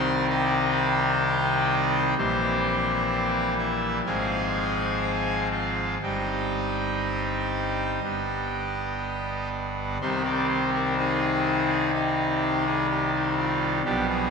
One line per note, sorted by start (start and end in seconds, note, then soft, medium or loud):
0.00 2.15 C2 medium
0.00 2.15 C3 medium
0.00 2.15 D#3 medium
0.00 2.15 G3 medium
0.00 2.15 C4 medium
0.00 0.26 C5 medium
0.00 0.26 G5 loud
0.00 0.26 C6 loud
0.29 2.14 G4 medium
0.29 2.14 D#5 medium
0.29 2.14 G5 loud
2.18 4.02 A#1 medium
2.18 4.02 A#2 medium
2.18 4.02 E3 soft
2.18 4.02 G3 soft
2.18 3.54 C4 medium
2.18 3.54 G4 medium
2.18 3.54 C5 loud
3.58 3.99 E4 medium
3.58 3.99 E5 medium
4.06 5.98 G#1 medium
4.06 5.98 G#2 soft
4.06 5.98 F3 soft
4.06 5.98 G#3 soft
4.06 5.98 C4 soft
4.06 5.48 G#4 medium
4.06 5.48 F5 medium
4.06 5.48 G#5 medium
5.52 5.94 F4 medium
5.52 5.94 F5 medium
6.02 8.00 G1 soft
6.02 8.00 G2 soft
6.02 8.00 G3 soft
6.02 8.00 C4 soft
6.02 8.00 D#4 soft
6.02 9.49 G4 medium
6.02 9.49 D#5 medium
6.02 9.49 G5 medium
8.04 9.98 G1 soft
8.04 9.98 G2 soft
8.04 9.98 G3 soft
8.04 9.98 B3 soft
8.04 9.98 D4 soft
10.01 13.82 C2 medium
10.01 13.82 C3 medium
10.01 13.82 D#3 soft
10.01 13.82 G3 medium
10.01 10.96 C4 soft
10.01 10.22 D#4 medium
10.01 10.22 G4 medium
10.01 10.22 C5 loud
10.25 10.46 D5 medium
10.49 10.70 C5 loud
10.74 10.95 A#4 medium
10.98 11.91 C4 medium
10.98 11.91 D#4 medium
10.98 11.91 G#4 loud
11.94 12.65 C4 medium
11.94 12.65 D#4 medium
11.94 12.64 G4 medium
12.66 12.87 G#4 loud
12.91 13.11 G4 loud
13.14 13.35 D#4 medium
13.37 13.78 F4 loud
13.85 14.30 B1 medium
13.85 14.30 B2 medium
13.85 14.30 F3 medium
13.85 14.30 G3 soft
13.85 14.06 B3 medium
13.85 14.06 D4 medium
13.85 14.06 G4 loud
14.09 14.30 G#4 medium